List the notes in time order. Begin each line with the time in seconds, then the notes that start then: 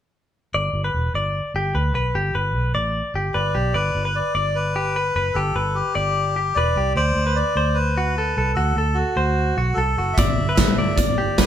0.54 G1 D5
0.73 G1
0.84 B4
0.94 E1
1.14 G1 D5
1.54 G1 G4
1.74 D2 B4
1.94 B1 B4
2.15 G1 G4
2.35 G1 B4
2.55 B1
2.75 A1 D5
3.14 G1 G4
3.34 G1 B4 D5
3.55 B1 G4
3.74 G1 B4 D5
3.95 G1
4.05 B4
4.15 D5
4.35 G1 D5
4.55 B4
4.76 G4
4.96 B4
5.15 F#1 B4
5.34 G1 G4 A4
5.55 G1 B4
5.75 G4
5.95 G1 D5
6.36 G4
6.55 E1 B4 D5
6.76 C2 G4
6.95 D2 C5 D5
7.15 D2
7.27 B4
7.36 D5
7.56 D2 C5
7.74 B4
7.98 F#4
8.18 A4
8.37 C2 A4
8.54 D2 F#4 A4
8.76 D2 A4
8.94 F#4
9.16 D2 C5
9.57 B1 F#4
9.74 C2 A4
9.98 F#1 F#4
10.14 E5, closed hi-hat
10.18 G1 D5, kick
10.38 G1
10.49 B4
10.55 E5, kick, snare, closed hi-hat
10.78 G1 D5
10.95 D5, kick, closed hi-hat
11.18 G4
11.38 B4, kick, snare, closed hi-hat